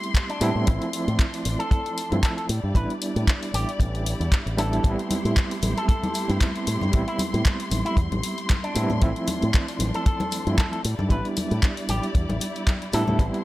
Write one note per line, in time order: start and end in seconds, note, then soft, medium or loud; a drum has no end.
0.00 0.38 G3 medium
0.00 0.63 A3 medium
0.00 0.38 B3 medium
0.00 0.39 C4 medium
0.00 0.39 E4 medium
0.00 0.64 E4 medium
0.00 0.64 G4 medium
0.00 2.46 C6 medium
0.00 closed hi-hat soft
0.14 kick medium
0.14 clap loud
0.14 closed hi-hat medium
0.29 0.67 D4 medium
0.29 closed hi-hat soft
0.41 0.51 A2 loud
0.41 0.64 G3 loud
0.41 0.64 B3 medium
0.41 0.64 C4 medium
0.41 0.65 E4 loud
0.41 open hi-hat loud
0.55 0.63 A2 medium
0.66 0.77 A1 loud
0.66 2.08 F3 medium
0.66 2.48 F3 medium
0.66 2.09 A3 medium
0.66 2.09 C4 medium
0.66 2.48 D4 medium
0.66 2.09 E4 medium
0.66 kick loud
0.66 closed hi-hat loud
0.82 closed hi-hat soft
0.93 open hi-hat loud
1.08 1.15 A2 medium
1.08 closed hi-hat soft
1.19 kick loud
1.19 clap loud
1.19 closed hi-hat loud
1.34 open hi-hat medium
1.45 1.55 A1 medium
1.45 open hi-hat loud
1.59 1.69 A4 medium
1.59 closed hi-hat soft
1.71 2.12 A4 medium
1.71 kick loud
1.71 closed hi-hat medium
1.86 closed hi-hat soft
1.98 open hi-hat loud
2.12 2.20 G2 loud
2.12 2.48 F3 medium
2.12 2.48 A3 medium
2.12 2.48 C4 medium
2.12 2.49 E4 medium
2.12 closed hi-hat soft
2.23 2.33 A4 medium
2.23 kick medium
2.23 clap loud
2.23 closed hi-hat loud
2.37 2.45 A4 medium
2.37 closed hi-hat soft
2.49 2.59 A2 medium
2.49 8.98 E4 medium
2.49 8.98 G4 medium
2.49 4.82 D5 medium
2.49 open hi-hat loud
2.64 2.72 G2 medium
2.74 2.85 A1 loud
2.74 4.55 G3 medium
2.74 4.55 B3 medium
2.74 4.56 D4 medium
2.74 4.56 E4 medium
2.74 2.92 B4 medium
2.74 kick loud
2.74 closed hi-hat medium
2.90 closed hi-hat soft
3.02 open hi-hat loud
3.16 3.24 A2 medium
3.16 closed hi-hat soft
3.27 kick loud
3.27 clap loud
3.27 closed hi-hat loud
3.43 open hi-hat medium
3.54 3.64 A1 medium
3.54 3.70 G4 medium
3.54 open hi-hat loud
3.69 closed hi-hat soft
3.80 4.13 A1 loud
3.80 kick loud
3.80 closed hi-hat medium
3.95 closed hi-hat soft
4.06 open hi-hat loud
4.20 4.28 E2 loud
4.20 closed hi-hat soft
4.32 kick loud
4.32 clap loud
4.32 closed hi-hat loud
4.46 4.78 A1 loud
4.46 closed hi-hat soft
4.58 4.81 G3 loud
4.58 4.82 B3 medium
4.58 4.82 D4 medium
4.58 4.82 E4 loud
4.58 4.90 A4 medium
4.58 open hi-hat loud
4.73 closed hi-hat soft
4.83 4.94 A1 loud
4.83 6.25 G3 medium
4.83 8.98 A3 medium
4.83 6.26 B3 medium
4.83 6.26 C4 medium
4.83 6.26 E4 medium
4.83 10.80 C6 medium
4.83 kick loud
4.83 closed hi-hat loud
4.83 maracas soft
4.99 closed hi-hat soft
5.11 open hi-hat loud
5.11 high conga medium
5.11 maracas medium
5.25 5.33 A2 medium
5.25 closed hi-hat soft
5.25 maracas medium
5.37 kick loud
5.37 clap loud
5.37 closed hi-hat loud
5.37 maracas soft
5.51 open hi-hat medium
5.62 5.72 A1 medium
5.62 open hi-hat loud
5.62 high conga medium
5.62 maracas loud
5.77 5.87 A4 medium
5.77 closed hi-hat soft
5.77 maracas medium
5.88 6.29 A4 medium
5.88 kick loud
5.88 closed hi-hat loud
5.88 maracas soft
6.03 closed hi-hat soft
6.03 high conga medium
6.14 open hi-hat loud
6.14 maracas medium
6.29 6.37 G2 loud
6.29 6.90 G3 medium
6.29 6.90 B3 medium
6.29 6.91 C4 medium
6.29 6.91 E4 medium
6.29 closed hi-hat soft
6.29 maracas medium
6.41 kick medium
6.41 clap loud
6.41 closed hi-hat loud
6.41 high conga medium
6.41 maracas soft
6.56 closed hi-hat soft
6.67 6.77 A2 medium
6.67 open hi-hat loud
6.67 maracas medium
6.81 6.89 G2 medium
6.81 high conga medium
6.81 maracas medium
6.92 7.03 A1 loud
6.92 8.72 G3 medium
6.92 8.73 B3 medium
6.92 8.73 C4 medium
6.92 8.73 E4 medium
6.92 kick loud
6.92 closed hi-hat loud
6.92 maracas soft
7.07 7.21 E4 medium
7.07 closed hi-hat soft
7.19 open hi-hat loud
7.19 high conga medium
7.19 maracas medium
7.34 7.41 A2 medium
7.34 closed hi-hat soft
7.34 maracas medium
7.45 kick loud
7.45 clap loud
7.45 closed hi-hat loud
7.45 maracas soft
7.60 open hi-hat medium
7.71 7.81 A1 medium
7.71 open hi-hat loud
7.71 high conga medium
7.71 maracas medium
7.85 7.99 E4 medium
7.85 closed hi-hat soft
7.85 maracas medium
7.97 8.07 E2 medium
7.97 kick loud
7.97 closed hi-hat medium
7.97 maracas soft
8.12 8.20 A1 medium
8.12 closed hi-hat soft
8.12 high conga medium
8.23 open hi-hat loud
8.23 maracas medium
8.38 closed hi-hat soft
8.38 maracas soft
8.49 kick loud
8.49 clap loud
8.49 closed hi-hat medium
8.49 high conga medium
8.49 maracas soft
8.64 9.02 D4 medium
8.64 closed hi-hat soft
8.75 8.86 A2 loud
8.75 8.99 G3 loud
8.75 8.99 B3 medium
8.75 8.99 C4 medium
8.75 8.99 E4 loud
8.75 open hi-hat loud
8.75 maracas medium
8.90 8.98 A2 medium
8.90 high conga medium
8.90 maracas medium
9.01 9.12 A1 loud
9.01 10.43 F3 medium
9.01 10.83 F3 medium
9.01 10.43 A3 medium
9.01 10.44 C4 medium
9.01 10.83 D4 medium
9.01 10.44 E4 loud
9.01 kick loud
9.01 closed hi-hat medium
9.01 maracas soft
9.16 closed hi-hat soft
9.27 open hi-hat loud
9.27 high conga medium
9.27 maracas medium
9.42 9.50 A2 medium
9.42 closed hi-hat soft
9.42 maracas soft
9.53 kick loud
9.53 clap loud
9.53 closed hi-hat medium
9.53 maracas soft
9.68 open hi-hat medium
9.79 9.90 A1 medium
9.79 open hi-hat loud
9.79 high conga medium
9.79 maracas loud
9.94 10.04 A4 medium
9.94 closed hi-hat soft
9.94 maracas soft
10.06 10.47 A4 medium
10.06 kick loud
10.06 closed hi-hat medium
10.06 maracas soft
10.20 closed hi-hat soft
10.20 high conga loud
10.31 open hi-hat loud
10.31 maracas loud
10.46 10.54 G2 loud
10.46 10.83 F3 medium
10.46 10.83 A3 medium
10.46 10.83 C4 medium
10.46 10.83 E4 medium
10.46 closed hi-hat soft
10.46 maracas soft
10.58 10.68 A4 medium
10.58 kick loud
10.58 clap loud
10.58 closed hi-hat medium
10.58 high conga medium
10.58 maracas soft
10.72 10.80 A4 medium
10.72 closed hi-hat soft
10.84 10.94 A2 medium
10.84 13.44 E4 medium
10.84 13.17 G4 medium
10.84 13.17 D5 medium
10.84 open hi-hat loud
10.84 maracas medium
10.99 11.07 G2 medium
10.99 high conga loud
10.99 maracas soft
11.09 11.20 A1 loud
11.09 12.90 G3 medium
11.09 12.90 B3 medium
11.09 12.90 D4 medium
11.09 12.91 E4 medium
11.09 11.27 B4 medium
11.09 kick loud
11.09 closed hi-hat medium
11.09 maracas soft
11.25 closed hi-hat soft
11.37 open hi-hat loud
11.37 high conga medium
11.37 maracas medium
11.51 11.59 A2 medium
11.51 closed hi-hat soft
11.51 maracas soft
11.63 kick loud
11.63 clap loud
11.63 closed hi-hat medium
11.63 maracas soft
11.77 open hi-hat medium
11.89 11.99 A1 medium
11.89 12.05 G4 medium
11.89 open hi-hat loud
11.89 high conga medium
11.89 maracas medium
12.03 closed hi-hat soft
12.03 maracas medium
12.14 12.25 E2 medium
12.14 kick loud
12.14 closed hi-hat medium
12.14 maracas soft
12.29 12.37 A1 medium
12.29 closed hi-hat soft
12.29 high conga loud
12.41 open hi-hat loud
12.41 maracas medium
12.55 closed hi-hat soft
12.55 maracas soft
12.67 kick loud
12.67 clap loud
12.67 closed hi-hat medium
12.67 high conga medium
12.67 maracas soft
12.82 closed hi-hat soft
12.93 13.03 A2 loud
12.93 13.16 G3 loud
12.93 13.17 B3 medium
12.93 13.17 D4 medium
12.93 13.17 E4 loud
12.93 13.25 A4 medium
12.93 open hi-hat loud
12.93 maracas medium
13.07 13.16 A2 medium
13.07 high conga loud
13.07 low conga medium
13.07 maracas medium
13.19 13.29 A1 loud
13.19 13.44 G3 medium
13.19 13.44 A3 medium
13.19 13.44 B3 medium
13.19 13.44 C4 medium
13.19 13.44 E4 medium
13.19 13.44 G4 medium
13.19 13.44 C6 medium
13.19 kick loud
13.19 closed hi-hat medium
13.19 maracas soft
13.34 closed hi-hat soft